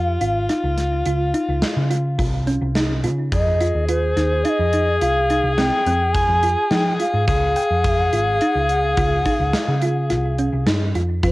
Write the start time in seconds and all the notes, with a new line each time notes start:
Already playing: F2 F4 G4 F5
0.21 G#1 F4, closed hi-hat
0.49 D#4, snare, closed hi-hat
0.63 C#2
0.77 snare, closed hi-hat
1.05 C#2 F4, closed hi-hat
1.34 D#4, closed hi-hat
1.48 C#2
1.62 snare, closed hi-hat
1.77 C#3
1.90 F4, closed hi-hat
2.19 C2 F4, kick, closed hi-hat
2.47 C#4, closed hi-hat
2.62 C2
2.75 D#4, snare, closed hi-hat
3.04 C#3 F4, closed hi-hat
3.32 F2 G#4 D#5, kick, closed hi-hat
3.61 F4, closed hi-hat
3.75 D#2
3.88 F4 C5, closed hi-hat
4.17 D#2 D#4, snare, closed hi-hat
4.44 D#4 F5, closed hi-hat
4.49 D#5
4.59 F2
4.73 D#4, closed hi-hat
5.00 C2 F4 F5, closed hi-hat
5.30 D#4, closed hi-hat
5.44 C2
5.56 C4 G5, snare, closed hi-hat
5.86 F2 C4, closed hi-hat
6.13 G#5, kick, closed hi-hat
6.29 F2
6.43 F4, closed hi-hat
6.70 F3 D#4 G5, snare, closed hi-hat
7.00 F4 F5, closed hi-hat
7.14 G#2
7.27 C#2 G#4, kick, closed hi-hat
7.56 G5, closed hi-hat
7.71 F2
7.84 kick, closed hi-hat
8.13 G#1 F4, closed hi-hat
8.41 D#4, closed hi-hat
8.55 C#2
8.69 closed hi-hat
8.97 C#2 F4, kick, closed hi-hat
9.25 D#4, kick, closed hi-hat
9.40 C#2
9.53 snare, closed hi-hat
9.68 C#3
9.82 F4, closed hi-hat
10.10 C2 F4, snare, closed hi-hat
10.39 C#4, closed hi-hat
10.53 C2
10.66 G2 D#4, snare, closed hi-hat
10.95 F2 F4, closed hi-hat
11.23 F2 F4 C5, kick, closed hi-hat